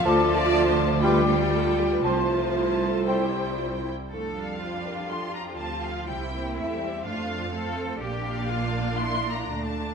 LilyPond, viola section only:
\new Staff \with { instrumentName = "Viola section" } { \time 4/4 \key f \major \tempo 4 = 122 << { f'2 f'2 | f'2 e'4. r8 | d'2. c'4 | c'2 d'4 c'4 |
d'1 | } \\ { f2 g2 | f2 g4. r8 | a8 g4. f4 f4 | g8 bes8 a8 g8 a4 a4 |
bes2. a4 | } >> }